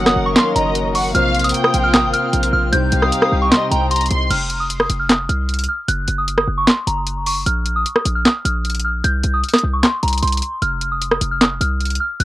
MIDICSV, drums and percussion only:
0, 0, Header, 1, 2, 480
1, 0, Start_track
1, 0, Tempo, 394737
1, 1395, Time_signature, 4, 2, 24, 8
1, 14884, End_track
2, 0, Start_track
2, 0, Title_t, "Drums"
2, 75, Note_on_c, 9, 37, 101
2, 75, Note_on_c, 9, 38, 70
2, 197, Note_off_c, 9, 37, 0
2, 197, Note_off_c, 9, 38, 0
2, 435, Note_on_c, 9, 38, 124
2, 435, Note_on_c, 9, 42, 83
2, 448, Note_on_c, 9, 39, 101
2, 557, Note_off_c, 9, 38, 0
2, 557, Note_off_c, 9, 42, 0
2, 569, Note_off_c, 9, 39, 0
2, 678, Note_on_c, 9, 42, 76
2, 799, Note_off_c, 9, 42, 0
2, 913, Note_on_c, 9, 42, 77
2, 1034, Note_off_c, 9, 42, 0
2, 1153, Note_on_c, 9, 46, 91
2, 1275, Note_off_c, 9, 46, 0
2, 1396, Note_on_c, 9, 42, 78
2, 1518, Note_off_c, 9, 42, 0
2, 1635, Note_on_c, 9, 42, 45
2, 1695, Note_off_c, 9, 42, 0
2, 1695, Note_on_c, 9, 42, 56
2, 1755, Note_off_c, 9, 42, 0
2, 1755, Note_on_c, 9, 42, 66
2, 1815, Note_off_c, 9, 42, 0
2, 1815, Note_on_c, 9, 42, 78
2, 1876, Note_off_c, 9, 42, 0
2, 1876, Note_on_c, 9, 42, 81
2, 1995, Note_on_c, 9, 37, 98
2, 1997, Note_off_c, 9, 42, 0
2, 2114, Note_on_c, 9, 42, 85
2, 2117, Note_off_c, 9, 37, 0
2, 2235, Note_off_c, 9, 42, 0
2, 2354, Note_on_c, 9, 38, 126
2, 2355, Note_on_c, 9, 42, 84
2, 2367, Note_on_c, 9, 39, 103
2, 2476, Note_off_c, 9, 38, 0
2, 2476, Note_off_c, 9, 42, 0
2, 2489, Note_off_c, 9, 39, 0
2, 2597, Note_on_c, 9, 42, 81
2, 2719, Note_off_c, 9, 42, 0
2, 2835, Note_on_c, 9, 42, 65
2, 2954, Note_off_c, 9, 42, 0
2, 2954, Note_on_c, 9, 42, 65
2, 3076, Note_off_c, 9, 42, 0
2, 3315, Note_on_c, 9, 42, 78
2, 3437, Note_off_c, 9, 42, 0
2, 3550, Note_on_c, 9, 42, 79
2, 3671, Note_off_c, 9, 42, 0
2, 3676, Note_on_c, 9, 37, 71
2, 3796, Note_on_c, 9, 42, 75
2, 3798, Note_off_c, 9, 37, 0
2, 3915, Note_on_c, 9, 37, 100
2, 3918, Note_off_c, 9, 42, 0
2, 4037, Note_off_c, 9, 37, 0
2, 4275, Note_on_c, 9, 38, 126
2, 4276, Note_on_c, 9, 42, 82
2, 4288, Note_on_c, 9, 39, 101
2, 4397, Note_off_c, 9, 38, 0
2, 4397, Note_off_c, 9, 42, 0
2, 4410, Note_off_c, 9, 39, 0
2, 4518, Note_on_c, 9, 42, 80
2, 4639, Note_off_c, 9, 42, 0
2, 4755, Note_on_c, 9, 42, 80
2, 4815, Note_off_c, 9, 42, 0
2, 4815, Note_on_c, 9, 42, 66
2, 4875, Note_off_c, 9, 42, 0
2, 4875, Note_on_c, 9, 42, 55
2, 4935, Note_off_c, 9, 42, 0
2, 4935, Note_on_c, 9, 42, 46
2, 4993, Note_off_c, 9, 42, 0
2, 4993, Note_on_c, 9, 42, 88
2, 5114, Note_off_c, 9, 42, 0
2, 5235, Note_on_c, 9, 49, 94
2, 5236, Note_on_c, 9, 42, 77
2, 5356, Note_off_c, 9, 49, 0
2, 5357, Note_off_c, 9, 42, 0
2, 5470, Note_on_c, 9, 42, 72
2, 5592, Note_off_c, 9, 42, 0
2, 5716, Note_on_c, 9, 42, 79
2, 5835, Note_on_c, 9, 37, 96
2, 5837, Note_off_c, 9, 42, 0
2, 5954, Note_on_c, 9, 42, 81
2, 5957, Note_off_c, 9, 37, 0
2, 6076, Note_off_c, 9, 42, 0
2, 6195, Note_on_c, 9, 38, 124
2, 6195, Note_on_c, 9, 42, 80
2, 6208, Note_on_c, 9, 39, 102
2, 6317, Note_off_c, 9, 38, 0
2, 6317, Note_off_c, 9, 42, 0
2, 6330, Note_off_c, 9, 39, 0
2, 6438, Note_on_c, 9, 42, 79
2, 6560, Note_off_c, 9, 42, 0
2, 6675, Note_on_c, 9, 42, 46
2, 6735, Note_off_c, 9, 42, 0
2, 6735, Note_on_c, 9, 42, 56
2, 6795, Note_off_c, 9, 42, 0
2, 6795, Note_on_c, 9, 42, 68
2, 6855, Note_off_c, 9, 42, 0
2, 6855, Note_on_c, 9, 42, 78
2, 6977, Note_off_c, 9, 42, 0
2, 7156, Note_on_c, 9, 42, 76
2, 7278, Note_off_c, 9, 42, 0
2, 7390, Note_on_c, 9, 42, 78
2, 7512, Note_off_c, 9, 42, 0
2, 7636, Note_on_c, 9, 42, 73
2, 7755, Note_on_c, 9, 37, 98
2, 7757, Note_off_c, 9, 42, 0
2, 7877, Note_off_c, 9, 37, 0
2, 8115, Note_on_c, 9, 38, 127
2, 8115, Note_on_c, 9, 42, 79
2, 8128, Note_on_c, 9, 39, 99
2, 8237, Note_off_c, 9, 38, 0
2, 8237, Note_off_c, 9, 42, 0
2, 8250, Note_off_c, 9, 39, 0
2, 8358, Note_on_c, 9, 42, 75
2, 8479, Note_off_c, 9, 42, 0
2, 8593, Note_on_c, 9, 42, 76
2, 8715, Note_off_c, 9, 42, 0
2, 8833, Note_on_c, 9, 46, 88
2, 8955, Note_off_c, 9, 46, 0
2, 9076, Note_on_c, 9, 42, 76
2, 9198, Note_off_c, 9, 42, 0
2, 9311, Note_on_c, 9, 42, 69
2, 9432, Note_off_c, 9, 42, 0
2, 9556, Note_on_c, 9, 42, 77
2, 9676, Note_on_c, 9, 37, 97
2, 9678, Note_off_c, 9, 42, 0
2, 9795, Note_on_c, 9, 42, 83
2, 9798, Note_off_c, 9, 37, 0
2, 9916, Note_off_c, 9, 42, 0
2, 10036, Note_on_c, 9, 38, 119
2, 10036, Note_on_c, 9, 42, 80
2, 10049, Note_on_c, 9, 39, 100
2, 10157, Note_off_c, 9, 38, 0
2, 10158, Note_off_c, 9, 42, 0
2, 10170, Note_off_c, 9, 39, 0
2, 10279, Note_on_c, 9, 42, 78
2, 10400, Note_off_c, 9, 42, 0
2, 10516, Note_on_c, 9, 42, 45
2, 10575, Note_off_c, 9, 42, 0
2, 10575, Note_on_c, 9, 42, 57
2, 10635, Note_off_c, 9, 42, 0
2, 10635, Note_on_c, 9, 42, 68
2, 10695, Note_off_c, 9, 42, 0
2, 10695, Note_on_c, 9, 42, 79
2, 10817, Note_off_c, 9, 42, 0
2, 10996, Note_on_c, 9, 42, 76
2, 11118, Note_off_c, 9, 42, 0
2, 11230, Note_on_c, 9, 42, 79
2, 11352, Note_off_c, 9, 42, 0
2, 11475, Note_on_c, 9, 42, 44
2, 11535, Note_off_c, 9, 42, 0
2, 11535, Note_on_c, 9, 42, 55
2, 11595, Note_off_c, 9, 42, 0
2, 11595, Note_on_c, 9, 37, 97
2, 11595, Note_on_c, 9, 38, 67
2, 11595, Note_on_c, 9, 42, 69
2, 11655, Note_off_c, 9, 42, 0
2, 11655, Note_on_c, 9, 42, 77
2, 11717, Note_off_c, 9, 37, 0
2, 11717, Note_off_c, 9, 38, 0
2, 11776, Note_off_c, 9, 42, 0
2, 11955, Note_on_c, 9, 38, 124
2, 11955, Note_on_c, 9, 42, 84
2, 11967, Note_on_c, 9, 39, 99
2, 12076, Note_off_c, 9, 38, 0
2, 12076, Note_off_c, 9, 42, 0
2, 12089, Note_off_c, 9, 39, 0
2, 12195, Note_on_c, 9, 42, 62
2, 12255, Note_off_c, 9, 42, 0
2, 12255, Note_on_c, 9, 42, 66
2, 12315, Note_off_c, 9, 42, 0
2, 12315, Note_on_c, 9, 42, 68
2, 12375, Note_off_c, 9, 42, 0
2, 12375, Note_on_c, 9, 42, 67
2, 12434, Note_off_c, 9, 42, 0
2, 12434, Note_on_c, 9, 42, 64
2, 12495, Note_off_c, 9, 42, 0
2, 12495, Note_on_c, 9, 42, 64
2, 12555, Note_off_c, 9, 42, 0
2, 12555, Note_on_c, 9, 42, 65
2, 12615, Note_off_c, 9, 42, 0
2, 12615, Note_on_c, 9, 42, 64
2, 12673, Note_off_c, 9, 42, 0
2, 12673, Note_on_c, 9, 42, 90
2, 12794, Note_off_c, 9, 42, 0
2, 12915, Note_on_c, 9, 42, 76
2, 13037, Note_off_c, 9, 42, 0
2, 13150, Note_on_c, 9, 42, 72
2, 13271, Note_off_c, 9, 42, 0
2, 13396, Note_on_c, 9, 42, 78
2, 13515, Note_on_c, 9, 37, 97
2, 13517, Note_off_c, 9, 42, 0
2, 13634, Note_on_c, 9, 42, 84
2, 13637, Note_off_c, 9, 37, 0
2, 13755, Note_off_c, 9, 42, 0
2, 13875, Note_on_c, 9, 38, 123
2, 13875, Note_on_c, 9, 42, 84
2, 13888, Note_on_c, 9, 39, 100
2, 13996, Note_off_c, 9, 38, 0
2, 13997, Note_off_c, 9, 42, 0
2, 14009, Note_off_c, 9, 39, 0
2, 14118, Note_on_c, 9, 42, 78
2, 14239, Note_off_c, 9, 42, 0
2, 14355, Note_on_c, 9, 42, 47
2, 14414, Note_off_c, 9, 42, 0
2, 14414, Note_on_c, 9, 42, 57
2, 14474, Note_off_c, 9, 42, 0
2, 14474, Note_on_c, 9, 42, 69
2, 14534, Note_off_c, 9, 42, 0
2, 14534, Note_on_c, 9, 42, 77
2, 14656, Note_off_c, 9, 42, 0
2, 14835, Note_on_c, 9, 42, 78
2, 14884, Note_off_c, 9, 42, 0
2, 14884, End_track
0, 0, End_of_file